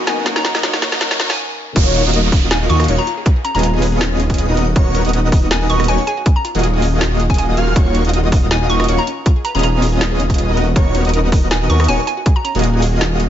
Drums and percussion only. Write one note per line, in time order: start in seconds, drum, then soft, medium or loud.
0.07 snare medium
0.07 closed hi-hat medium
0.26 snare medium
0.26 closed hi-hat medium
0.36 snare medium
0.45 snare medium
0.45 closed hi-hat medium
0.55 snare medium
0.55 closed hi-hat soft
0.59 closed hi-hat medium
0.63 snare loud
0.63 closed hi-hat medium
0.73 snare medium
0.82 snare loud
0.82 closed hi-hat medium
0.92 snare medium
1.01 snare loud
1.01 closed hi-hat medium
1.11 snare medium
1.20 snare loud
1.20 closed hi-hat medium
1.30 snare loud
1.30 closed hi-hat soft
1.34 closed hi-hat medium
1.76 kick loud
1.76 closed hi-hat medium
1.76 crash loud
1.95 closed hi-hat medium
2.05 closed hi-hat medium
2.09 closed hi-hat medium
2.13 closed hi-hat medium
2.32 kick loud
2.32 open hi-hat loud
2.51 snare loud
2.51 closed hi-hat medium
2.70 closed hi-hat medium
2.80 cross-stick medium
2.80 closed hi-hat medium
2.84 closed hi-hat medium
2.88 closed hi-hat medium
3.07 closed hi-hat medium
3.26 kick loud
3.26 closed hi-hat medium
3.45 closed hi-hat medium
3.55 closed hi-hat soft
3.59 closed hi-hat medium
3.63 closed hi-hat medium
3.82 open hi-hat loud
4.01 snare loud
4.01 closed hi-hat medium
4.20 closed hi-hat medium
4.30 kick medium
4.30 closed hi-hat medium
4.34 closed hi-hat medium
4.38 closed hi-hat medium
4.57 closed hi-hat medium
4.76 kick loud
4.76 closed hi-hat medium
4.95 closed hi-hat medium
5.05 closed hi-hat soft
5.09 closed hi-hat medium
5.13 closed hi-hat medium
5.32 kick loud
5.32 open hi-hat medium
5.51 snare loud
5.51 closed hi-hat medium
5.70 closed hi-hat medium
5.80 cross-stick medium
5.80 closed hi-hat soft
5.84 closed hi-hat medium
5.88 closed hi-hat medium
6.07 closed hi-hat medium
6.26 kick loud
6.26 closed hi-hat medium
6.45 closed hi-hat medium
6.55 closed hi-hat soft
6.59 closed hi-hat medium
6.63 closed hi-hat medium
6.82 open hi-hat medium
7.01 snare loud
7.01 closed hi-hat medium
7.20 closed hi-hat medium
7.30 kick medium
7.30 closed hi-hat soft
7.34 closed hi-hat medium
7.38 closed hi-hat medium
7.57 closed hi-hat medium
7.76 kick loud
7.76 closed hi-hat medium
7.95 closed hi-hat medium
8.05 closed hi-hat soft
8.09 closed hi-hat medium
8.13 closed hi-hat medium
8.32 kick loud
8.32 open hi-hat medium
8.51 snare loud
8.51 closed hi-hat medium
8.70 closed hi-hat medium
8.80 cross-stick medium
8.80 closed hi-hat soft
8.84 closed hi-hat medium
8.88 closed hi-hat medium
9.07 closed hi-hat medium
9.26 kick loud
9.26 closed hi-hat medium
9.45 closed hi-hat medium
9.55 closed hi-hat soft
9.59 closed hi-hat medium
9.63 closed hi-hat medium
9.82 open hi-hat loud
10.01 snare loud
10.01 closed hi-hat medium
10.20 closed hi-hat medium
10.30 kick medium
10.30 closed hi-hat medium
10.34 closed hi-hat medium
10.38 closed hi-hat medium
10.57 closed hi-hat medium
10.76 kick loud
10.76 closed hi-hat medium
10.95 closed hi-hat medium
11.05 closed hi-hat soft
11.09 closed hi-hat medium
11.13 closed hi-hat medium
11.32 kick loud
11.32 open hi-hat loud
11.51 snare loud
11.51 closed hi-hat medium
11.70 closed hi-hat medium
11.80 cross-stick medium
11.80 closed hi-hat medium
11.84 closed hi-hat medium
11.88 closed hi-hat medium
12.07 closed hi-hat medium
12.26 kick loud
12.26 closed hi-hat medium
12.45 closed hi-hat medium
12.55 closed hi-hat medium
12.59 closed hi-hat medium
12.64 closed hi-hat medium
12.82 open hi-hat loud
13.01 snare loud
13.01 closed hi-hat medium
13.20 closed hi-hat medium